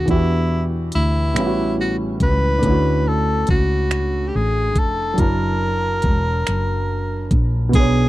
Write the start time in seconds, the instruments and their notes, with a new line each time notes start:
0.06 fretless electric bass E2, grand piano E3 B3 D4, kick, closed hi-hat
0.10 tenor saxophone E4, grand piano F#4 G4
0.92 fretless electric bass D2, tenor saxophone E4, closed hi-hat
1.34 fretless electric bass A1, grand piano A2 E3 G3 B3, finger snap, closed hi-hat
1.38 grand piano C#4 F4
1.46 grand piano F#4
1.81 tenor saxophone F#4
2.20 fretless electric bass C#2, tenor saxophone B4, kick, closed hi-hat
2.59 grand piano A3 D4
2.63 fretless electric bass D2, grand piano C#4, kick, closed hi-hat
2.67 grand piano E4 F#4
3.08 tenor saxophone A4
3.47 fretless electric bass C#2, tenor saxophone F#4, kick, closed hi-hat
3.91 finger snap, closed hi-hat
4.28 tenor saxophone G4
4.35 fretless electric bass A1, tenor saxophone G#4
4.75 fretless electric bass F1, tenor saxophone A4, kick, closed hi-hat
5.14 grand piano F#3 D4
5.18 fretless electric bass F#1, grand piano E4 A5, tenor saxophone A#4, kick, closed hi-hat
5.24 grand piano A#4
6.02 fretless electric bass E1, kick, closed hi-hat
6.47 fretless electric bass F#1, finger snap, closed hi-hat
7.31 fretless electric bass A#1, kick, closed hi-hat
7.69 grand piano B2 B3
7.73 fretless electric bass B1, grand piano D4 G#4, tenor saxophone G#4, kick, closed hi-hat
7.80 grand piano C#5